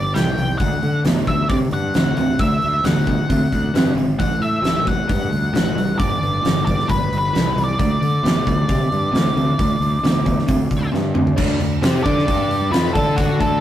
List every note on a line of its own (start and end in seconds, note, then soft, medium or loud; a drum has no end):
0.00 0.11 G1 medium
0.00 0.10 G2 medium
0.00 0.10 F3 medium
0.00 0.16 D5 medium
0.14 0.33 C2 medium
0.14 0.35 G2 medium
0.14 0.35 F3 medium
0.14 0.58 G5 medium
0.14 snare loud
0.14 open hi-hat medium
0.37 0.55 C2 medium
0.37 0.57 G2 medium
0.37 0.58 F3 medium
0.37 open hi-hat soft
0.58 0.78 D2 medium
0.58 1.00 D3 medium
0.58 1.01 A3 medium
0.58 1.01 F#5 loud
0.58 kick loud
0.58 open hi-hat medium
0.82 1.00 D3 medium
0.82 open hi-hat soft
1.04 1.22 D2 medium
1.04 1.25 D3 medium
1.04 1.25 B3 medium
1.04 snare loud
1.04 open hi-hat medium
1.27 1.45 D2 loud
1.27 1.48 D3 medium
1.27 1.48 B3 medium
1.27 1.49 E5 medium
1.27 kick medium
1.27 open hi-hat soft
1.49 1.67 C3 medium
1.49 1.90 D3 medium
1.49 1.91 C4 medium
1.49 1.55 D5 medium
1.49 kick loud
1.49 open hi-hat medium
1.71 1.90 G2 medium
1.71 2.17 F#5 loud
1.71 open hi-hat soft
1.94 2.13 D2 medium
1.94 2.15 D3 medium
1.94 2.16 C4 medium
1.94 snare loud
1.94 open hi-hat medium
2.17 2.35 D2 medium
2.17 2.38 D3 medium
2.17 2.38 C4 medium
2.17 2.38 F#5 medium
2.17 open hi-hat medium
2.39 2.57 D2 medium
2.39 2.80 D3 medium
2.39 2.80 A3 medium
2.39 2.86 E5 loud
2.39 kick loud
2.39 open hi-hat medium
2.62 2.80 D2 medium
2.62 open hi-hat soft
2.84 3.19 D2 medium
2.84 3.05 D3 medium
2.84 3.05 B3 medium
2.84 3.93 F#5 medium
2.84 snare loud
2.84 open hi-hat medium
3.07 3.28 D3 medium
3.07 3.28 B3 medium
3.07 kick medium
3.07 open hi-hat soft
3.29 3.47 D2 medium
3.29 3.70 D3 medium
3.29 3.70 C4 medium
3.29 kick loud
3.29 open hi-hat medium
3.52 3.70 D2 medium
3.52 kick medium
3.52 open hi-hat soft
3.74 3.92 G2 medium
3.74 3.94 D3 medium
3.74 3.95 C4 medium
3.74 snare loud
3.74 open hi-hat medium
3.95 4.20 G#1 medium
3.95 4.17 D3 medium
3.95 4.17 C4 medium
3.95 open hi-hat soft
4.19 4.38 A1 medium
4.19 4.59 A2 medium
4.19 4.60 E3 medium
4.19 4.42 F#5 loud
4.19 kick medium
4.19 open hi-hat medium
4.39 4.58 A2 medium
4.39 4.88 E5 loud
4.39 open hi-hat soft
4.62 4.80 A1 medium
4.62 4.84 A2 medium
4.62 4.84 F#3 medium
4.62 snare loud
4.62 open hi-hat medium
4.85 5.05 A1 medium
4.85 5.06 A2 medium
4.85 5.07 F#3 medium
4.85 6.03 F#5 loud
4.85 kick medium
4.85 open hi-hat soft
5.08 5.27 G2 medium
5.08 5.49 A2 medium
5.08 5.49 G3 medium
5.08 kick loud
5.08 open hi-hat medium
5.30 5.48 D2 medium
5.30 open hi-hat soft
5.53 5.71 A1 medium
5.53 5.74 A2 medium
5.53 5.74 G3 loud
5.53 snare loud
5.53 open hi-hat medium
5.75 5.94 A1 medium
5.75 5.96 A2 medium
5.75 5.96 G3 medium
5.75 open hi-hat medium
5.98 6.17 G1 medium
5.98 6.39 G2 medium
5.98 6.39 D3 medium
5.98 6.62 D5 loud
5.98 kick loud
5.98 open hi-hat medium
6.21 6.39 G1 medium
6.21 open hi-hat soft
6.43 6.80 G1 medium
6.43 6.64 G2 medium
6.43 6.64 E3 medium
6.43 snare loud
6.43 open hi-hat medium
6.66 6.86 G2 medium
6.66 6.86 E3 medium
6.66 6.89 D5 medium
6.66 kick medium
6.66 open hi-hat soft
6.79 snare soft
6.88 7.07 G1 medium
6.88 7.29 G2 medium
6.88 7.30 F3 medium
6.88 7.16 B4 medium
6.88 kick medium
6.88 open hi-hat medium
7.12 7.30 G1 medium
7.12 open hi-hat soft
7.18 7.60 B4 medium
7.33 7.53 C2 medium
7.33 7.54 G2 medium
7.33 7.54 F3 medium
7.33 snare medium
7.33 open hi-hat medium
7.56 7.74 C2 medium
7.56 7.76 G2 medium
7.56 7.77 F3 medium
7.56 open hi-hat medium
7.64 7.78 D5 medium
7.79 7.97 D2 medium
7.79 8.20 D3 medium
7.79 8.20 A3 medium
7.79 10.90 D5 medium
7.79 kick loud
7.79 open hi-hat medium
8.01 8.19 D3 medium
8.01 open hi-hat soft
8.23 8.41 D2 medium
8.23 8.44 D3 medium
8.23 8.44 B3 medium
8.23 snare loud
8.23 open hi-hat medium
8.46 8.64 D2 loud
8.46 8.66 D3 medium
8.46 8.67 B3 medium
8.46 kick medium
8.46 open hi-hat soft
8.68 8.86 C3 medium
8.68 9.09 D3 medium
8.68 9.09 C4 medium
8.68 kick loud
8.68 open hi-hat medium
8.91 9.09 G2 medium
8.91 open hi-hat soft
9.12 9.31 D2 medium
9.12 9.33 D3 medium
9.12 9.33 C4 loud
9.12 open hi-hat medium
9.16 snare loud
9.35 9.53 D2 medium
9.35 9.56 D3 medium
9.35 9.57 C4 medium
9.35 open hi-hat soft
9.59 9.77 D2 medium
9.59 9.99 D3 medium
9.59 9.99 A3 medium
9.59 kick loud
9.59 open hi-hat medium
9.80 9.98 D2 medium
9.80 open hi-hat soft
10.02 10.38 D2 medium
10.02 10.24 D3 medium
10.02 10.24 B3 medium
10.02 snare loud
10.02 open hi-hat medium
10.26 10.46 D3 medium
10.26 10.46 B3 medium
10.26 kick medium
10.26 open hi-hat medium
10.38 snare soft
10.47 10.66 D2 medium
10.47 10.88 D3 medium
10.47 10.89 C4 medium
10.47 kick loud
10.47 open hi-hat medium
10.71 10.89 D2 medium
10.71 kick medium
10.71 open hi-hat soft
10.92 11.11 G2 loud
10.92 11.13 D3 medium
10.92 11.13 C4 loud
10.92 snare medium
11.14 11.33 D2 medium
11.14 11.35 D3 medium
11.14 11.36 C4 medium
11.14 mid tom medium
11.27 floor tom medium
11.36 11.59 D2 medium
11.36 11.59 D3 medium
11.36 11.60 A3 medium
11.36 11.60 D4 loud
11.36 kick loud
11.36 crash loud
11.60 11.81 D2 medium
11.60 11.79 D3 medium
11.60 11.79 A3 medium
11.60 open hi-hat soft
11.82 12.04 C3 medium
11.82 12.04 C4 medium
11.82 12.04 G4 medium
11.82 12.04 C5 medium
11.82 snare loud
11.82 open hi-hat medium
12.04 12.27 D3 loud
12.04 12.26 D4 loud
12.04 12.27 A4 medium
12.04 12.70 D5 medium
12.04 12.27 D5 loud
12.04 kick loud
12.04 open hi-hat soft
12.19 snare soft
12.27 12.70 G2 loud
12.27 12.71 G3 medium
12.27 12.71 D4 medium
12.27 12.73 G4 medium
12.27 kick loud
12.27 open hi-hat medium
12.51 open hi-hat medium
12.71 12.93 F2 loud
12.71 12.94 F3 medium
12.71 12.94 C4 loud
12.71 12.94 F4 loud
12.71 12.93 B4 medium
12.71 snare loud
12.71 open hi-hat medium
12.93 13.37 D3 medium
12.93 13.39 D4 medium
12.93 13.16 A4 medium
12.93 13.40 A4 medium
12.93 13.40 D5 medium
12.93 kick loud
12.93 open hi-hat medium
13.16 13.39 F#4 medium
13.16 kick loud
13.16 open hi-hat medium
13.39 13.60 D2 medium
13.39 13.60 D3 loud
13.39 13.60 A3 loud
13.39 13.60 D4 loud
13.39 13.60 A4 medium
13.39 kick medium
13.39 open hi-hat soft